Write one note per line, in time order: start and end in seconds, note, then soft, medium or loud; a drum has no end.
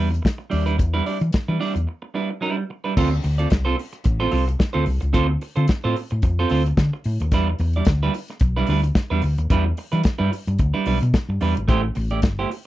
0.00 0.19 E2 medium
0.10 muted clean electric guitar stroke soft
0.10 closed hi-hat soft
0.22 muted clean electric guitar stroke soft
0.22 kick loud
0.22 snare loud
0.27 closed hi-hat medium
0.38 muted clean electric guitar stroke soft
0.50 0.79 D#2 medium
0.50 0.65 G3 medium
0.50 0.66 D4 medium
0.50 0.65 E4 medium
0.50 0.66 D5 medium
0.50 open hi-hat medium
0.66 0.76 G3 medium
0.66 0.76 D4 medium
0.66 0.76 E4 medium
0.66 0.76 B4 medium
0.66 closed hi-hat soft
0.78 1.00 E2 medium
0.78 muted clean electric guitar stroke soft
0.78 kick loud
0.78 closed hi-hat medium
0.94 1.04 G3 medium
0.94 1.05 D4 medium
0.94 1.06 E4 medium
0.94 1.05 B4 medium
1.06 1.17 G3 medium
1.06 1.18 D4 medium
1.06 1.18 E4 medium
1.06 1.18 D5 medium
1.06 open hi-hat medium
1.21 1.31 E3 medium
1.21 muted clean electric guitar stroke soft
1.21 closed hi-hat soft
1.33 muted clean electric guitar stroke soft
1.33 kick loud
1.33 snare loud
1.33 closed hi-hat medium
1.48 1.58 E3 medium
1.48 1.58 G3 medium
1.48 1.58 D4 medium
1.48 1.58 E4 medium
1.48 1.58 B4 medium
1.59 1.75 G3 medium
1.59 1.75 D4 medium
1.59 1.74 E4 medium
1.59 1.74 D5 medium
1.59 open hi-hat medium
1.75 1.85 E2 medium
1.75 muted clean electric guitar stroke soft
1.75 closed hi-hat soft
1.87 muted clean electric guitar stroke soft
2.02 muted clean electric guitar stroke soft
2.14 2.29 G3 medium
2.14 2.29 D4 medium
2.14 2.29 E4 medium
2.14 2.29 B4 medium
2.30 muted clean electric guitar stroke soft
2.41 2.63 G3 medium
2.41 2.57 D4 medium
2.41 2.56 E4 medium
2.41 2.56 B4 medium
2.57 muted clean electric guitar stroke soft
2.70 muted clean electric guitar stroke soft
2.84 2.94 G3 medium
2.84 2.94 D4 medium
2.84 2.94 E4 medium
2.84 2.93 B4 medium
2.97 3.18 D2 loud
2.97 3.11 C4 loud
2.97 3.10 F4 loud
2.97 3.10 A4 medium
2.97 3.10 C5 loud
2.97 kick loud
2.97 crash loud
3.11 muted clean electric guitar stroke medium
3.23 3.45 D2 loud
3.23 muted clean electric guitar stroke soft
3.23 open hi-hat medium
3.38 3.48 C4 soft
3.38 3.48 F4 soft
3.38 3.48 A4 medium
3.38 3.48 D5 medium
3.38 closed hi-hat soft
3.50 3.72 C2 medium
3.50 muted clean electric guitar stroke soft
3.50 kick loud
3.50 snare loud
3.50 closed hi-hat medium
3.65 3.76 C4 medium
3.65 3.76 F4 medium
3.65 3.76 A4 medium
3.65 3.77 C5 medium
3.77 muted clean electric guitar stroke soft
3.77 open hi-hat medium
3.93 muted clean electric guitar stroke soft
3.93 closed hi-hat soft
4.04 4.26 A1 medium
4.04 muted clean electric guitar stroke soft
4.04 kick loud
4.04 closed hi-hat medium
4.20 4.30 C4 medium
4.20 4.30 F4 medium
4.20 4.31 A4 medium
4.20 4.31 C5 medium
4.31 4.53 C2 medium
4.31 4.43 C4 medium
4.31 4.43 F4 medium
4.31 4.44 A4 medium
4.31 4.44 C5 medium
4.31 open hi-hat medium
4.48 muted clean electric guitar stroke medium
4.48 closed hi-hat medium
4.59 muted clean electric guitar stroke medium
4.59 kick loud
4.59 snare loud
4.59 closed hi-hat medium
4.73 4.84 D2 medium
4.73 4.85 C4 medium
4.73 4.85 F4 medium
4.73 4.85 A4 medium
4.73 4.85 C5 medium
4.86 4.99 C2 loud
4.86 muted clean electric guitar stroke soft
4.86 open hi-hat medium
5.01 5.12 C#2 medium
5.01 muted clean electric guitar stroke medium
5.01 closed hi-hat medium
5.13 5.35 D2 medium
5.13 5.28 C4 loud
5.13 5.28 F4 loud
5.13 5.27 A4 loud
5.13 5.27 C5 loud
5.13 kick loud
5.13 closed hi-hat medium
5.28 muted clean electric guitar stroke soft
5.41 muted clean electric guitar stroke soft
5.41 open hi-hat medium
5.56 5.66 D3 medium
5.56 5.66 C4 medium
5.56 5.66 F4 medium
5.56 5.65 A4 medium
5.56 5.65 C5 medium
5.56 closed hi-hat soft
5.68 muted clean electric guitar stroke soft
5.68 kick loud
5.68 snare loud
5.68 closed hi-hat medium
5.84 5.94 A2 medium
5.84 5.96 C4 medium
5.84 5.96 F4 medium
5.84 5.96 A4 medium
5.84 5.95 C5 medium
5.96 muted clean electric guitar stroke soft
5.96 open hi-hat medium
6.10 6.21 A2 medium
6.10 muted clean electric guitar stroke soft
6.10 closed hi-hat soft
6.22 6.44 F2 loud
6.22 muted clean electric guitar stroke soft
6.22 kick loud
6.22 closed hi-hat medium
6.39 6.49 C4 medium
6.39 6.50 F4 medium
6.39 6.50 A4 medium
6.39 6.50 C5 medium
6.50 6.71 D2 medium
6.50 6.62 C4 medium
6.50 6.62 F4 medium
6.50 6.62 A4 medium
6.50 6.62 C5 medium
6.50 open hi-hat medium
6.66 muted clean electric guitar stroke soft
6.66 closed hi-hat medium
6.77 6.89 D3 loud
6.77 muted clean electric guitar stroke soft
6.77 kick loud
6.77 snare loud
6.77 closed hi-hat medium
6.93 muted clean electric guitar stroke medium
7.04 7.17 A2 loud
7.04 open hi-hat medium
7.20 7.32 D#2 medium
7.20 muted clean electric guitar stroke medium
7.20 closed hi-hat medium
7.32 7.53 E2 loud
7.32 7.47 G3 medium
7.32 7.47 D4 medium
7.32 7.47 E4 medium
7.32 7.47 B4 loud
7.32 kick loud
7.32 closed hi-hat medium
7.50 muted clean electric guitar stroke soft
7.59 7.80 E2 loud
7.59 muted clean electric guitar stroke soft
7.59 open hi-hat medium
7.73 7.85 G3 medium
7.73 7.85 D4 medium
7.73 7.85 E4 medium
7.73 7.84 D5 medium
7.73 closed hi-hat soft
7.85 8.08 D2 loud
7.85 muted clean electric guitar stroke soft
7.85 kick loud
7.85 snare loud
7.85 closed hi-hat medium
8.03 8.13 G3 medium
8.03 8.14 D4 medium
8.03 8.14 E4 medium
8.03 8.14 B4 loud
8.14 muted clean electric guitar stroke soft
8.14 open hi-hat medium
8.28 muted clean electric guitar stroke soft
8.28 snare soft
8.28 closed hi-hat soft
8.40 8.62 B1 medium
8.40 muted clean electric guitar stroke soft
8.40 kick loud
8.40 closed hi-hat medium
8.57 8.68 G3 medium
8.57 8.68 D4 medium
8.57 8.68 E4 medium
8.57 8.68 B4 medium
8.67 8.89 D2 loud
8.67 8.80 G3 medium
8.67 8.80 D4 medium
8.67 8.80 E4 medium
8.67 8.80 B4 medium
8.67 open hi-hat medium
8.83 muted clean electric guitar stroke soft
8.83 closed hi-hat medium
8.95 muted clean electric guitar stroke soft
8.95 kick loud
8.95 snare loud
8.95 closed hi-hat medium
9.10 9.20 E2 medium
9.10 9.22 G3 medium
9.10 9.22 D4 medium
9.10 9.22 E4 medium
9.10 9.22 B4 medium
9.22 9.34 D2 loud
9.22 muted clean electric guitar stroke soft
9.22 open hi-hat medium
9.38 9.47 D#2 medium
9.38 muted clean electric guitar stroke soft
9.38 closed hi-hat medium
9.50 9.71 E2 medium
9.50 9.65 G3 medium
9.50 9.65 D4 medium
9.50 9.65 E4 loud
9.50 9.65 B4 loud
9.50 kick loud
9.50 closed hi-hat medium
9.66 muted clean electric guitar stroke soft
9.77 muted clean electric guitar stroke medium
9.77 open hi-hat medium
9.92 10.02 E3 medium
9.92 10.02 G3 soft
9.92 10.02 D4 soft
9.92 10.01 E4 medium
9.92 10.01 B4 medium
9.92 closed hi-hat soft
10.03 muted clean electric guitar stroke soft
10.03 kick loud
10.03 snare loud
10.03 closed hi-hat medium
10.18 10.29 G2 loud
10.18 10.30 G3 medium
10.18 10.31 D4 medium
10.18 10.30 E4 medium
10.18 10.31 B4 medium
10.31 muted clean electric guitar stroke soft
10.31 open hi-hat medium
10.47 10.56 G2 medium
10.47 muted clean electric guitar stroke soft
10.47 closed hi-hat soft
10.59 10.71 D2 medium
10.59 muted clean electric guitar stroke soft
10.59 kick loud
10.59 closed hi-hat medium
10.74 10.85 G3 medium
10.74 10.85 D4 medium
10.74 10.86 E4 medium
10.74 10.85 B4 medium
10.86 10.98 B1 medium
10.86 10.98 G3 medium
10.86 10.98 D4 medium
10.86 10.98 E4 medium
10.86 10.98 B4 medium
10.86 open hi-hat medium
11.02 11.11 B2 medium
11.02 muted clean electric guitar stroke soft
11.02 closed hi-hat medium
11.14 muted clean electric guitar stroke soft
11.14 kick loud
11.14 snare loud
11.14 closed hi-hat medium
11.29 11.38 G2 medium
11.29 muted clean electric guitar stroke soft
11.41 11.53 E2 loud
11.41 11.55 G3 medium
11.41 11.55 D4 medium
11.41 11.55 E4 medium
11.41 11.55 B4 medium
11.41 open hi-hat medium
11.56 11.66 G#1 medium
11.56 muted clean electric guitar stroke soft
11.56 closed hi-hat medium
11.68 11.89 A1 medium
11.68 11.82 A3 loud
11.68 11.82 E4 loud
11.68 11.82 G4 loud
11.68 11.81 C5 loud
11.68 kick loud
11.68 closed hi-hat medium
11.83 muted clean electric guitar stroke medium
11.95 12.23 A1 loud
11.95 muted clean electric guitar stroke soft
11.95 open hi-hat medium
12.10 12.20 A3 soft
12.10 12.20 E4 soft
12.10 12.20 G4 soft
12.10 12.20 D5 medium
12.10 closed hi-hat soft
12.22 12.44 G1 medium
12.22 muted clean electric guitar stroke soft
12.22 kick loud
12.22 snare loud
12.22 closed hi-hat medium
12.39 12.49 A3 medium
12.39 12.49 E4 medium
12.39 12.50 G4 medium
12.39 12.50 C5 medium
12.50 muted clean electric guitar stroke soft
12.50 open hi-hat medium